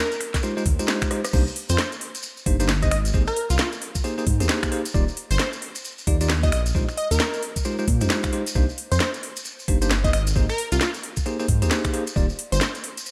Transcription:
Already playing: A#4
0.12 closed hi-hat, maracas
0.21 finger snap, open hi-hat
0.34 kick, snare, closed hi-hat, maracas
0.43 G#3 D#4 F4 G4 C5, closed hi-hat, maracas
0.57 G#3 D#4 F4 G4 C5, maracas
0.66 D#2, kick, open hi-hat
0.79 G#3 D#4 F4 G4 C5, closed hi-hat, maracas
0.88 snare, maracas
1.02 finger snap, kick, closed hi-hat, maracas
1.11 G#3 D#4 F4 G4 C5, cross-stick, open hi-hat
1.25 cross-stick, closed hi-hat, maracas
1.33 C2 A#3 D4 D#4 G4 C5, kick, crash, maracas
1.47 maracas
1.56 open hi-hat
1.69 F2 C5, closed hi-hat, maracas
1.78 snare, maracas
1.92 closed hi-hat, maracas
2.01 open hi-hat
2.15 closed hi-hat, maracas
2.23 closed hi-hat, maracas
2.37 maracas
2.46 G1 A#3 D4 D#4 G4 C5, kick, open hi-hat
2.60 A#3 D4 D#4 G4 C5, closed hi-hat, maracas
2.69 snare, maracas
2.82 A#3 D4 D#4 G4 C5 D#5, kick, closed hi-hat, maracas
2.91 G#1 D#5, finger snap, open hi-hat
3.05 closed hi-hat, maracas
3.14 G#1 A#3 D#4 G4 G#4 C5, kick, maracas
3.27 A#4, finger snap, maracas
3.37 open hi-hat
3.50 C2 F4, closed hi-hat, maracas
3.58 F4, snare, maracas
3.72 closed hi-hat, maracas
3.82 open hi-hat
3.95 kick, closed hi-hat, maracas
4.04 A#3 D#4 G4 G#4 C5, closed hi-hat, maracas
4.18 A#3 D#4 G4 G#4 C5, maracas
4.27 G#2, kick, open hi-hat
4.40 D#2 A#3 D#4 G4 G#4 C5, closed hi-hat, maracas
4.49 snare, maracas
4.63 finger snap, kick, closed hi-hat, maracas
4.72 A#3 D#4 G4 G#4 C5, open hi-hat
4.85 closed hi-hat, maracas
4.94 D#1 A#3 D#4 F4 G4 D5, kick, maracas
5.08 maracas
5.17 open hi-hat
5.31 G1 C5, closed hi-hat, maracas
5.39 snare, maracas
5.53 closed hi-hat, maracas
5.62 open hi-hat
5.75 closed hi-hat, maracas
5.85 closed hi-hat, maracas
5.98 maracas
6.07 D#2 A#3 D#4 F4 G4 D5, kick, open hi-hat
6.21 A#3 D#4 F4 G4 D5, closed hi-hat, maracas
6.30 snare, maracas
6.43 A#3 D#4 F4 G4 D5 D#5, kick, closed hi-hat, maracas
6.52 A#1 D#5, finger snap, open hi-hat
6.66 closed hi-hat, maracas
6.75 A#1 G#3 D#4 F4 G4 C5, kick, maracas
6.89 finger snap, maracas
6.97 D#5, open hi-hat
7.11 D#2 A#4, closed hi-hat, maracas
7.20 snare, maracas
7.34 closed hi-hat, maracas
7.43 open hi-hat
7.56 kick, closed hi-hat, maracas
7.65 G#3 D#4 F4 G4 C5, closed hi-hat, maracas
7.79 G#3 D#4 F4 G4 C5, maracas
7.88 A#2, kick, open hi-hat
8.01 F2 G#3 D#4 F4 G4 C5, closed hi-hat, maracas
8.10 snare, maracas
8.23 finger snap, kick, closed hi-hat, maracas
8.33 G#3 D#4 F4 G4 C5, open hi-hat
8.46 closed hi-hat, maracas
8.55 C2 A#3 D4 D#4 G4 C5, kick, maracas
8.69 maracas
8.78 open hi-hat
8.92 F2 C5, closed hi-hat, maracas
9.00 snare, maracas
9.14 closed hi-hat, maracas
9.23 open hi-hat
9.36 closed hi-hat, maracas
9.45 closed hi-hat, maracas
9.59 maracas
9.68 G1 A#3 D4 D#4 G4 C5, kick, open hi-hat
9.82 A#3 D4 D#4 G4 C5, closed hi-hat, maracas
9.91 snare, maracas
10.04 A#3 D4 D#4 G4 C5 D#5, kick, closed hi-hat, maracas
10.13 G#1 D#5, finger snap, open hi-hat
10.27 closed hi-hat, maracas
10.36 G#1 A#3 D#4 G4 G#4 C5, kick, maracas
10.49 A#4, finger snap, maracas
10.58 open hi-hat
10.72 C2 F4, closed hi-hat, maracas
10.81 F4, snare, maracas
10.94 closed hi-hat, maracas
11.03 open hi-hat
11.17 kick, closed hi-hat, maracas
11.26 A#3 D#4 G4 G#4 C5, closed hi-hat, maracas
11.40 A#3 D#4 G4 G#4 C5, maracas
11.48 G#2, kick, open hi-hat
11.62 D#2 A#3 D#4 G4 G#4 C5, closed hi-hat, maracas
11.71 snare, maracas
11.84 finger snap, kick, closed hi-hat, maracas
11.94 A#3 D#4 G4 G#4 C5, open hi-hat
12.07 closed hi-hat, maracas
12.16 D#1 A#3 D#4 F4 G4 D5, kick, maracas
12.30 maracas
12.39 open hi-hat
12.52 G1 C5, closed hi-hat, maracas
12.61 snare, maracas
12.75 closed hi-hat, maracas
12.84 open hi-hat
12.97 closed hi-hat, maracas
13.06 closed hi-hat, maracas

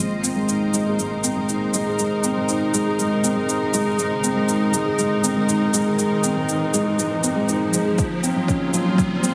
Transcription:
Already playing: A#3 F4 C5 D#5
0.00 G#1 G#3, riser
0.21 C4 A#4, shaker
0.36 G#3 D#4
0.49 D#4, shaker
0.74 G#3, shaker
0.87 G#4
0.99 G#3, shaker
1.24 C4, shaker
1.36 G#3
1.49 D#4, shaker
1.74 G#3, shaker
1.87 G#4
1.99 G#3, shaker
2.24 C4, shaker
2.37 G#3
2.49 D#4, shaker
2.74 G#3, shaker
2.86 G#4
2.99 G#3, shaker
3.24 C4, shaker
3.36 G#3
3.48 D#4, shaker
3.73 G#3, shaker
3.86 G#4
3.98 G#3, shaker
4.23 C4, shaker
4.36 G#3
4.48 D#4, shaker
4.74 G#3, shaker
4.86 G#4
4.98 G#3, shaker
5.23 C4, shaker
5.36 G#3
5.48 D#4, shaker
5.73 G#3, shaker
5.86 G#4
5.98 G#3, shaker
6.23 C4, shaker
6.36 G#3
6.49 D#4, shaker
6.74 G#3, shaker
6.86 G#4
6.99 G#3, shaker
7.24 C4, shaker
7.36 G#3
7.49 D#4, shaker
7.73 G#3, shaker
7.85 G#4
7.98 A#1 F3 A#3, kick, shaker
8.23 C4 F4, shaker
8.35 F3
8.48 C#4, kick, shaker
8.66 C5
8.73 F3, shaker
8.86 F4
8.98 F3, kick, shaker
9.23 C4, shaker

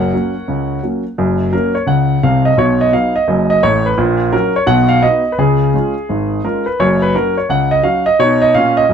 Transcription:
Already playing: F#1 F#2 A#4 C#5 F#5
0.14 F#3 A#3 C#4
0.48 C#2 C#3
0.83 F#3 A#3 C#4
1.18 F#1 F#2
1.52 F#3 A#3 C#4 A#4
1.75 C#5
1.86 C#2 C#3 F#5
2.23 C2 C3 F5
2.45 D#5
2.57 B1 B2 C#5
2.81 D#5
2.93 F#3 B3 D#4 F5
3.16 D#5
3.28 F#1 F#2
3.50 D#5
3.63 A1 A2 C#5
3.86 B4
3.98 A#1 A#2
4.32 F#3 C#4 F#4 A#4
4.56 C#5
4.66 B1 B2 F#5
4.89 F5
5.02 B3 D#4 F#4 D#5
5.32 B4
5.38 C#2 C#3 G#4
5.74 G#3 C#4 F4
6.09 G#1 G#2
6.44 G#3 C#4 F4 A#4
6.66 B4
6.80 F#1 F#2 C#5
7.02 B4
7.15 F#3 C#4 F#4 A#4
7.37 C#5
7.49 C#2 C#3 F#5
7.71 D#5
7.83 F#3 C#4 F#4 F5
8.06 D#5
8.19 B2 D#4 C#5
8.42 D#5
8.55 A#2 C#4 F5
8.77 D#5
8.89 F#2

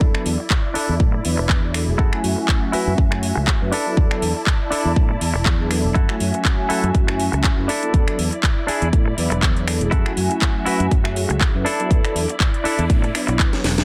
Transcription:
Already playing: F#3 B3 D4 E4 A4 D5
0.01 E2, kick
0.14 F#3 B3 D4 E4 A4, finger snap, muted fingered electric bass stroke
0.26 E2, open hi-hat
0.38 muted clean electric guitar stroke
0.50 kick, clap
0.74 D4 E4 A4, muted fingered electric bass stroke, open hi-hat
0.89 E2
1.00 A2 F#3 B3 D4 E4 A4, kick
1.12 muted clean electric guitar stroke
1.24 E2 F#3 B3 D4 E4 B4, muted clean electric guitar stroke, open hi-hat
1.37 E1, muted clean electric guitar stroke
1.48 E2, muted clean electric guitar stroke, kick, clap
1.62 F#3 B3 D4 E4 C#5, muted clean electric guitar stroke
1.74 F#3 B3 D4 E4 A4, finger snap, open hi-hat
1.88 E1 F#3 A3 C#4 E4 G#4
1.98 F#2 E4 F#4 A4 E5, kick
2.12 F#3 A3 C#4 E4 G#5, finger snap
2.24 F#2, open hi-hat
2.36 muted clean electric guitar stroke
2.48 kick, clap
2.72 E4 F#4 B4, muted fingered electric bass stroke, open hi-hat
2.87 F#2
2.98 F#2, kick
3.11 F#3 A3 C#4 E4 G#5, finger snap, muted clean electric guitar stroke
3.22 muted clean electric guitar stroke, open hi-hat
3.35 C#2, muted clean electric guitar stroke
3.47 muted clean electric guitar stroke, kick, clap
3.61 F#2 F#3 A3 C#4 E4 B4, muted clean electric guitar stroke
3.72 D4 E4 A4 D5 A5, open hi-hat
3.86 F#3 B3 D4 E4 A4
3.97 E2, kick
4.10 F#3 B3 D4 E4 A4, finger snap, muted fingered electric bass stroke
4.22 E2, open hi-hat
4.35 muted clean electric guitar stroke
4.47 kick, clap
4.71 D4 E4 A4, muted fingered electric bass stroke, open hi-hat
4.85 E2
4.96 F#3 B3 D4 E4 A4, kick
5.09 muted clean electric guitar stroke
5.20 E2, muted clean electric guitar stroke, open hi-hat
5.34 E1, muted clean electric guitar stroke
5.45 E2, muted clean electric guitar stroke, kick, clap
5.59 F#3 B3 D4 E4 G#4, muted clean electric guitar stroke
5.71 F#3 B3 D4 E4 A4, finger snap, open hi-hat
5.84 E1
5.94 F#2 E4 F#4 A4 E5, kick, closed hi-hat
6.08 F#3 A3 C#4 E4 G#5, finger snap
6.20 F#2, open hi-hat
6.33 muted clean electric guitar stroke, closed hi-hat
6.45 kick, clap, closed hi-hat
6.69 E4 F#4 A4, muted fingered electric bass stroke, open hi-hat
6.83 F#2, closed hi-hat
6.95 F#2, kick, closed hi-hat
7.07 F#3 A3 C#4 E4 G#5, finger snap, muted clean electric guitar stroke
7.18 muted clean electric guitar stroke, open hi-hat
7.32 C#2, muted clean electric guitar stroke, closed hi-hat
7.43 muted clean electric guitar stroke, kick, clap, closed hi-hat
7.57 F#2 F#3 A3 C#4 E4 B4, muted clean electric guitar stroke
7.68 D4 E4 A4 D5, open hi-hat
7.82 F#3 B3 D4 E4 A4, closed hi-hat
7.94 E2, kick, closed hi-hat
8.07 F#3 B3 D4 E4 A4, finger snap, closed hi-hat
8.18 E2, open hi-hat
8.31 muted clean electric guitar stroke, closed hi-hat
8.43 kick, clap, closed hi-hat
8.67 D4 E4 G#4, muted fingered electric bass stroke, open hi-hat
8.82 E2, closed hi-hat
8.92 A2 F#3 B3 D4 E4 A4, kick, closed hi-hat
9.06 muted clean electric guitar stroke
9.17 E2 F#3 B3 D4 E4 B4, muted clean electric guitar stroke, open hi-hat
9.30 E1, muted clean electric guitar stroke, closed hi-hat
9.42 E2, muted clean electric guitar stroke, kick, clap, closed hi-hat
9.55 F#3 B3 D4 E4 C#5, muted clean electric guitar stroke, closed hi-hat
9.67 F#3 B3 D4 E4 A4, finger snap, open hi-hat
9.80 E1 F#3 A3 C#4 E4 G#4, closed hi-hat
9.91 F#2 E4 F#4 A4 E5, kick, closed hi-hat
10.05 F#3 A3 C#4 E4 G#5, finger snap
10.17 F#2, open hi-hat
10.30 muted clean electric guitar stroke, closed hi-hat
10.42 kick, clap, closed hi-hat
10.66 E4 F#4 B4, muted fingered electric bass stroke, open hi-hat
10.80 F#2, closed hi-hat
10.91 kick, closed hi-hat
11.04 F#3 A3 C#4 E4 G#4, finger snap, muted clean electric guitar stroke
11.15 muted clean electric guitar stroke, open hi-hat
11.29 C#2, muted clean electric guitar stroke, closed hi-hat
11.40 muted clean electric guitar stroke, kick, clap, closed hi-hat
11.54 F#2 F#3 A3 C#4 E4 B4, muted clean electric guitar stroke
11.65 D4 E4 A4 D5, open hi-hat
11.79 F#3 B3 D4 E4 A4, closed hi-hat
11.91 E2, kick, closed hi-hat, noise sweep
12.04 F#3 B3 D4 E4 A4, finger snap, closed hi-hat
12.15 E2, open hi-hat
12.28 muted clean electric guitar stroke, closed hi-hat
12.40 kick, clap, closed hi-hat
12.54 closed hi-hat
12.64 D4 E4 A4, muted fingered electric bass stroke, open hi-hat
12.79 E2, closed hi-hat
12.90 A2 F#3 B3 D4 E4 A4, kick, closed hi-hat
13.02 muted clean electric guitar stroke, closed hi-hat
13.14 F#3 B3 D4 E4 B4, finger snap, muted clean electric guitar stroke, open hi-hat
13.27 B1, muted clean electric guitar stroke, closed hi-hat
13.38 muted clean electric guitar stroke, kick, clap, closed hi-hat
13.52 F#3 B3 D4 E4 C#5, muted clean electric guitar stroke, snare, closed hi-hat
13.64 E1 F#3 B3 D4 E4 A4, snare, open hi-hat
13.77 F#3 A3 C#4 E4 G#4, snare, closed hi-hat

